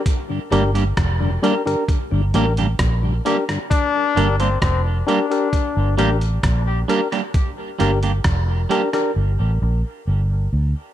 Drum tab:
HH |x-xxx-xxx-xxx-xx|x-xxx-xxx-xxx-xx|x-xxx-xx--------|
SD |----r-------r--r|----r-------r--r|----r--r--------|
BD |o---o---o---o---|o---o---o---o---|o---o-----------|